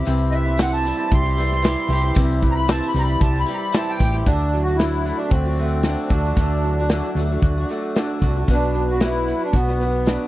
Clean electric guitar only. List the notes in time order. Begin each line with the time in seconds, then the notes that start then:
Already playing: G3 G4
0.07 C3
0.33 E3
0.60 E3
0.87 G3
1.12 G4
1.39 G3
1.65 E4
1.90 G4
2.16 C3
2.42 E3
2.69 E3
2.96 G3
3.22 G4
3.49 G3
3.75 E4
4.01 G4
4.27 D3
4.54 F#3
4.80 F#3
5.06 A3
5.33 F#4
5.60 A3
5.86 D4
6.12 F#4
6.38 D3
6.64 F#3
6.90 F#3
7.17 A3
7.43 F#4
7.70 A3
7.96 D4
8.22 F#4
8.48 B2
8.74 F#3
9.01 F#3
9.28 B3
9.54 F#4
9.80 B3
10.07 D4